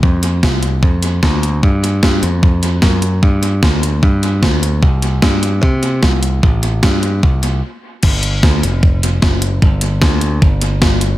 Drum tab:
CC |----------------|----------------|----------------|----------------|
HH |--x---x---x---x-|--x---x---x---x-|--x---x---x---x-|--x---x---x---x-|
SD |----o-------o---|----o-------oo--|----o-------o---|----o-------oo--|
BD |o---o---o---o---|o---o---o---o---|o---o---o---o---|o---o---o---o---|

CC |----------------|x---------------|----------------|
HH |--x---x---x-----|--x---x---x---x-|--x---x---x---x-|
SD |----o-----------|----o-------o---|----o-------o---|
BD |o---o---o-------|o---o---o---o---|o---o---o---o---|